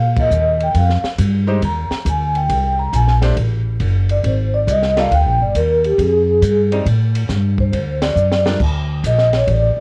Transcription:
0.00 0.30 A#2 medium
0.00 0.18 F5 medium
0.17 0.59 D#5 medium
0.17 kick medium
0.17 ride medium
0.30 0.73 D#2 medium
0.30 hi-hat pedal medium
0.60 0.76 G5 medium
0.60 ride soft
0.74 1.02 F2 medium
0.74 1.04 F5 medium
0.74 kick soft
0.74 ride medium
0.89 snare soft
1.03 muted upright bass stroke soft
1.03 snare soft
1.18 1.61 G2 medium
1.18 kick soft
1.18 hi-hat pedal medium
1.18 ride medium
1.47 1.60 G#3 medium
1.47 1.60 D#4 medium
1.47 1.61 G4 medium
1.47 1.61 C5 medium
1.62 1.89 D#2 medium
1.62 2.04 A#5 medium
1.62 kick soft
1.62 ride medium
1.90 muted upright bass stroke soft
1.90 snare soft
2.05 2.48 D2 medium
2.05 kick soft
2.05 hi-hat pedal medium
2.05 ride medium
2.09 2.36 G#5 medium
2.35 2.76 G5 medium
2.35 ride soft
2.49 2.91 C2 medium
2.49 kick soft
2.49 ride medium
2.79 2.93 A#5 loud
2.93 3.35 A#1 medium
2.93 3.12 G#5 medium
2.93 kick soft
2.93 hi-hat pedal medium
2.93 ride medium
3.08 snare soft
3.22 3.35 A3 medium
3.22 3.35 D4 medium
3.22 3.35 G4 medium
3.22 3.36 C5 medium
3.22 snare soft
3.22 ride soft
3.37 3.79 A1 medium
3.37 kick soft
3.37 ride medium
3.80 4.22 F#1 medium
3.80 kick soft
3.80 hi-hat pedal soft
3.80 ride medium
4.09 4.24 D5 medium
4.09 ride soft
4.24 4.66 G#1 medium
4.24 4.54 C5 medium
4.24 kick soft
4.24 ride medium
4.54 4.67 D5 medium
4.67 5.09 C2 medium
4.67 4.97 D#5 medium
4.67 kick soft
4.67 hi-hat pedal medium
4.67 ride medium
4.82 snare soft
4.97 5.10 G3 medium
4.97 5.10 A#3 medium
4.97 5.10 F4 medium
4.97 5.10 A4 medium
4.97 5.12 F5 medium
4.97 snare soft
4.97 ride soft
5.11 5.26 D2 medium
5.11 5.41 G5 medium
5.11 kick soft
5.11 ride medium
5.26 5.39 A#1 medium
5.40 5.53 G1 medium
5.40 5.55 D5 medium
5.55 5.97 D#2 medium
5.55 5.84 A#4 medium
5.55 kick soft
5.55 hi-hat pedal medium
5.55 ride medium
5.84 5.99 G4 medium
5.84 ride soft
5.98 6.40 F2 medium
5.98 6.68 G#4 medium
5.98 kick soft
5.98 ride medium
6.42 6.84 G2 medium
6.42 kick soft
6.42 hi-hat pedal medium
6.42 ride medium
6.72 6.84 G3 medium
6.72 6.85 C4 medium
6.72 6.85 D#4 medium
6.72 ride soft
6.86 7.28 A2 medium
6.86 kick soft
6.86 ride medium
7.15 ride medium
7.29 7.71 G2 medium
7.29 kick soft
7.29 snare soft
7.29 hi-hat pedal medium
7.58 8.00 C5 medium
7.58 kick medium
7.73 8.15 D2 medium
7.73 kick soft
7.73 ride medium
8.02 8.43 D5 medium
8.02 snare medium
8.02 ride medium
8.15 8.58 F#2 medium
8.15 hi-hat pedal medium
8.32 snare medium
8.46 8.59 G3 medium
8.46 8.59 D4 medium
8.46 8.59 F4 medium
8.46 8.59 A#4 medium
8.46 snare medium
8.60 9.02 D2 medium
8.60 kick medium
8.60 crash medium
9.04 9.46 A#1 medium
9.04 9.33 D#5 medium
9.04 kick soft
9.04 hi-hat pedal medium
9.04 ride medium
9.18 snare soft
9.33 9.48 C#5 medium
9.33 snare soft
9.33 ride soft
9.47 9.74 A1 medium
9.47 kick soft
9.47 ride medium
9.77 muted upright bass stroke soft

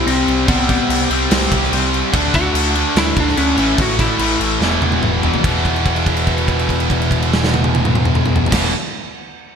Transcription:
0.00 0.46 C3 medium
0.00 0.47 G3 medium
0.00 0.48 G3 medium
0.00 0.47 C4 loud
0.00 0.48 C4 loud
0.06 0.20 C2 medium
0.06 0.47 C3 medium
0.06 0.47 G3 medium
0.06 0.48 C4 medium
0.06 crash medium
0.28 0.41 C2 medium
0.28 crash medium
0.48 0.75 C2 loud
0.48 1.09 C3 loud
0.48 1.10 G3 loud
0.48 0.69 B3 medium
0.48 1.09 C4 loud
0.48 kick loud
0.48 crash loud
0.69 1.08 B3 medium
0.69 kick medium
0.69 crash medium
0.89 1.03 C2 loud
0.89 crash loud
1.10 1.23 C2 loud
1.10 1.72 C3 medium
1.10 1.72 G3 medium
1.10 1.71 C4 loud
1.10 crash medium
1.31 1.44 C2 loud
1.31 snare loud
1.31 crash loud
1.51 1.65 C2 loud
1.51 kick medium
1.51 crash medium
1.63 snare soft
1.72 1.99 C2 medium
1.72 2.13 C3 medium
1.72 2.13 G3 medium
1.72 2.14 C4 medium
1.72 crash medium
1.94 crash medium
2.13 2.27 D2 loud
2.13 2.75 D3 loud
2.13 2.75 A3 loud
2.13 2.74 D4 loud
2.13 kick loud
2.13 crash medium
2.34 2.47 D2 medium
2.34 2.73 F#4 loud
2.34 kick medium
2.34 crash medium
2.54 2.81 D2 loud
2.54 crash medium
2.75 3.36 D3 medium
2.75 3.37 A3 medium
2.75 3.36 D4 medium
2.75 crash medium
2.96 3.09 D2 loud
2.96 3.19 E4 loud
2.96 snare loud
2.96 crash medium
3.16 3.30 D2 loud
3.16 3.37 D4 loud
3.16 kick medium
3.16 crash medium
3.28 snare soft
3.37 3.51 D2 medium
3.37 3.57 D3 medium
3.37 3.58 A3 medium
3.37 3.80 C#4 loud
3.37 3.58 D4 medium
3.37 crash medium
3.58 3.71 A1 loud
3.58 4.19 A2 loud
3.58 4.20 E3 loud
3.58 4.20 A3 loud
3.58 crash medium
3.78 4.05 A1 loud
3.78 3.99 F#4 loud
3.78 kick loud
3.78 crash medium
3.99 4.38 E4 medium
3.99 kick medium
3.99 crash medium
4.19 4.33 A1 loud
4.19 4.60 A2 medium
4.19 4.61 E3 medium
4.19 4.61 A3 medium
4.19 crash loud
4.40 4.54 A1 loud
4.40 crash medium
4.61 4.75 E1 loud
4.61 5.22 E2 loud
4.61 5.23 B2 loud
4.61 5.22 E3 loud
4.61 snare medium
4.81 4.95 E1 loud
4.81 high tom medium
4.92 high tom medium
5.03 5.30 E1 loud
5.03 mid tom medium
5.23 5.42 E2 medium
5.23 5.44 B2 medium
5.23 5.43 E3 medium
5.23 floor tom loud
5.34 floor tom loud
5.43 8.43 E1 loud
5.43 8.50 E2 loud
5.43 8.53 B2 loud
5.43 kick loud
5.43 crash medium
5.48 8.55 E3 loud
5.65 kick medium
5.65 crash soft
5.76 crash soft
5.86 kick medium
5.86 crash medium
5.96 crash soft
6.06 kick medium
6.06 crash medium
6.17 crash medium
6.27 kick medium
6.27 crash medium
6.38 crash medium
6.48 kick medium
6.48 crash medium
6.59 crash medium
6.69 kick medium
6.69 crash soft
6.80 crash medium
6.90 kick medium
6.90 crash medium
7.02 crash medium
7.11 kick medium
7.11 crash medium
7.22 crash medium
7.33 snare loud
7.44 snare loud
7.54 high tom loud
7.64 high tom loud
7.75 high tom loud
7.85 mid tom loud
7.95 mid tom loud
8.05 mid tom loud
8.15 mid tom loud
8.26 mid tom loud
8.36 floor tom loud
8.46 floor tom loud
8.51 8.69 E1 loud
8.51 8.70 E2 loud
8.51 8.71 B2 loud
8.51 kick loud
8.51 snare loud
8.51 crash loud
8.55 8.72 E3 loud

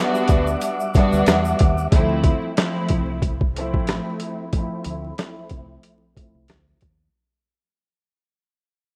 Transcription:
0.00 0.72 G3 loud
0.00 1.88 G3 medium
0.00 0.73 B3 loud
0.00 0.73 D4 loud
0.00 0.74 F#4 loud
0.00 1.88 E5 medium
0.00 1.88 F#5 medium
0.00 1.88 D6 medium
0.15 shaker medium
0.28 0.55 D2 medium
0.28 kick medium
0.28 closed hi-hat medium
0.28 shaker medium
0.47 shaker medium
0.61 closed hi-hat medium
0.61 shaker medium
0.80 shaker medium
0.94 1.55 G3 loud
0.94 1.55 B3 loud
0.94 1.55 D4 loud
0.94 1.56 F#4 loud
0.94 kick loud
0.94 closed hi-hat medium
0.94 shaker soft
1.13 1.24 D2 loud
1.13 shaker medium
1.26 1.52 E2 loud
1.26 snare loud
1.26 closed hi-hat medium
1.26 shaker medium
1.45 shaker medium
1.59 1.86 D#2 medium
1.59 kick medium
1.59 closed hi-hat medium
1.78 shaker soft
1.90 2.32 D2 loud
1.90 2.52 F3 medium
1.90 2.52 A3 loud
1.90 2.53 C4 medium
1.90 2.53 E4 loud
1.90 kick loud
1.90 closed hi-hat loud
2.24 kick loud
2.24 closed hi-hat medium
2.55 3.32 F3 loud
2.55 3.33 A3 medium
2.55 3.33 C4 medium
2.55 3.34 E4 loud
2.55 snare loud
2.55 closed hi-hat loud
2.89 3.74 C2 medium
2.89 kick medium
2.89 closed hi-hat medium
3.22 kick medium
3.22 closed hi-hat medium
3.41 kick medium
3.55 4.46 F3 loud
3.55 4.47 A3 medium
3.55 4.47 C4 medium
3.55 4.47 E4 loud
3.55 closed hi-hat medium
3.74 3.99 A1 medium
3.74 kick loud
3.87 snare loud
3.87 closed hi-hat medium
4.20 closed hi-hat medium
4.52 5.13 F3 loud
4.52 5.13 A3 medium
4.52 5.14 C4 medium
4.52 5.14 E4 loud
4.52 kick loud
4.52 closed hi-hat loud
4.84 5.11 D2 loud
4.84 closed hi-hat medium
5.17 5.94 F3 medium
5.17 5.94 A3 medium
5.17 5.95 C4 medium
5.17 5.95 E4 loud
5.17 snare loud
5.17 closed hi-hat loud
5.49 5.76 C2 medium
5.49 kick medium
5.49 closed hi-hat medium
5.83 closed hi-hat medium
6.14 6.76 F3 loud
6.14 6.76 A3 medium
6.14 6.77 C4 medium
6.14 6.77 E4 loud
6.14 kick medium
6.14 closed hi-hat medium
6.35 6.46 C2 medium
6.48 6.74 D2 loud
6.48 snare loud
6.48 closed hi-hat medium
6.81 7.07 D#2 medium
6.81 kick medium
6.81 closed hi-hat medium

